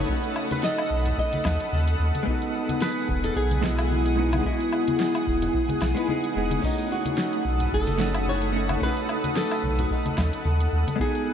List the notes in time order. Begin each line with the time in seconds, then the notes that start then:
Already playing: A4 C#5 F#5 B5 D#6
0.05 A3 C#4
0.09 D#4 F#4, kick, cabasa
0.24 closed hi-hat
0.36 cabasa, low woodblock
0.51 B4, closed hi-hat, high conga, cabasa
0.63 D#5, snare, cabasa
0.78 low woodblock
0.91 B1, kick, cabasa
1.06 closed hi-hat, low conga, cabasa
1.18 D#5, kick, cabasa
1.33 closed hi-hat, high conga
1.45 D#2, kick, snare, cabasa, low woodblock
1.60 closed hi-hat, cabasa
1.72 D#2, high conga, cabasa
1.88 closed hi-hat
1.99 D#2, cabasa
2.15 closed hi-hat, high conga, cabasa
2.23 G#3 B3
2.27 D#4 F#4 G#4 D#6, kick, cabasa
2.42 closed hi-hat
2.55 cabasa
2.69 closed hi-hat, high conga, cabasa
2.81 B4, snare, cabasa
3.09 E1, kick, high conga, cabasa
3.24 A4, closed hi-hat, low conga, cabasa
3.36 B1 G#4, kick, cabasa
3.51 closed hi-hat, high conga
3.61 G#3 B3 E4 F#4 D#5, kick, snare, cabasa
3.79 closed hi-hat, cabasa, low woodblock
3.91 high conga, cabasa
4.06 closed hi-hat
4.16 G#3 B3 D#4 F#4 B4, cabasa
4.33 closed hi-hat, high conga, cabasa, low woodblock
4.41 G#3 B3
4.45 E4 F#4 D#5, kick, cabasa
4.60 closed hi-hat
4.72 cabasa, low woodblock
4.88 closed hi-hat, high conga, cabasa
5.00 snare, cabasa
5.15 closed hi-hat, low woodblock
5.27 E1, kick, cabasa
5.42 closed hi-hat, low conga, cabasa
5.54 kick, cabasa
5.69 closed hi-hat, high conga
5.81 B1, kick, snare, cabasa, low woodblock
5.95 G#3 B3 D#4 B4, closed hi-hat, cabasa
6.07 G#3 B3 D#4 G#4, high conga, cabasa
6.24 closed hi-hat
6.34 E1 G#3 B3 D#4 G#4, cabasa
6.51 closed hi-hat, high conga, cabasa
6.59 A3 C#4
6.63 D#4 F#4 A4 F#5 B5 D#6, kick, crash, cabasa
6.78 closed hi-hat, cabasa
6.92 F#4
7.06 closed hi-hat, high conga, cabasa
7.18 snare, cabasa
7.33 closed hi-hat, cabasa
7.45 B1, kick
7.60 closed hi-hat, low conga, cabasa
7.72 F#1 A4, kick, cabasa
7.87 closed hi-hat, high conga, cabasa
7.98 A3 C#4 D#4 F#4, snare
8.15 closed hi-hat, cabasa, low woodblock
8.27 C#5, high conga, cabasa
8.42 closed hi-hat, cabasa
8.52 A3 C#4 D#4 A4
8.69 closed hi-hat, high conga, cabasa, low woodblock
8.77 A3 C#4
8.81 D#4 F#4 B4, kick, cabasa
8.97 closed hi-hat, cabasa
9.09 low woodblock
9.24 closed hi-hat, high conga, cabasa
9.36 A4, snare, cabasa
9.51 closed hi-hat, cabasa, low woodblock
9.63 B1, kick, high conga
9.78 F#4, closed hi-hat, low conga, cabasa
9.91 D#4, kick, cabasa
10.06 closed hi-hat, high conga, cabasa
10.18 D#2, kick, snare, low woodblock
10.33 closed hi-hat, cabasa
10.45 D#2, high conga, cabasa
10.60 closed hi-hat, cabasa
10.73 D#2
10.87 closed hi-hat, high conga, cabasa
10.96 G#3 B3 G#4 D#6
11.00 D#4 F#4 G#4, kick, cabasa
11.15 closed hi-hat, cabasa